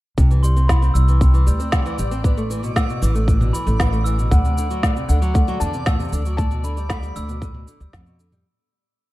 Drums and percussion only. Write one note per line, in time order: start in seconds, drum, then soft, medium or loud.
0.18 kick medium
0.18 cabasa soft
0.31 cabasa soft
0.44 cabasa medium
0.57 cabasa soft
0.69 kick medium
0.69 snare medium
0.69 cabasa soft
0.83 cabasa soft
0.95 cabasa medium
1.08 cabasa soft
1.21 kick loud
1.21 cabasa soft
1.34 cabasa soft
1.47 cabasa medium
1.60 cabasa soft
1.72 kick loud
1.72 snare loud
1.72 cabasa soft
1.86 cabasa soft
1.98 cabasa medium
2.12 cabasa soft
2.24 kick loud
2.24 cabasa soft
2.38 cabasa soft
2.51 cabasa medium
2.64 cabasa soft
2.76 kick medium
2.76 snare medium
2.76 cabasa soft
2.90 cabasa soft
3.02 cabasa medium
3.15 cabasa soft
3.28 kick loud
3.28 cabasa soft
3.41 mid tom medium
3.41 cabasa soft
3.54 cabasa medium
3.67 cabasa soft
3.80 kick loud
3.80 snare loud
3.80 cabasa soft
3.93 cabasa soft
4.06 cabasa medium
4.19 cabasa soft
4.31 kick loud
4.31 cabasa soft
4.45 cabasa soft
4.58 cabasa medium
4.71 cabasa soft
4.83 kick medium
4.83 snare medium
4.83 cabasa soft
4.96 cabasa soft
5.09 cabasa medium
5.22 cabasa soft
5.35 kick loud
5.35 cabasa soft
5.48 cabasa soft
5.61 cabasa medium
5.74 cabasa soft
5.86 kick loud
5.86 snare loud
5.86 cabasa soft
6.00 cabasa soft
6.04 cabasa soft
6.08 cabasa soft
6.13 cabasa medium
6.21 cabasa soft
6.25 cabasa soft
6.38 kick loud
6.38 cabasa soft
6.51 cabasa soft
6.64 cabasa medium
6.77 cabasa soft
6.90 kick loud
6.90 snare loud
6.90 cabasa soft
7.03 cabasa soft
7.16 cabasa medium
7.29 cabasa soft
7.42 kick loud
7.42 cabasa soft
7.54 mid tom medium
7.68 cabasa medium
7.81 cabasa soft
7.93 kick loud
7.93 snare loud
7.93 cabasa soft
8.07 cabasa soft
8.20 cabasa medium
8.32 mid tom medium
8.32 cabasa soft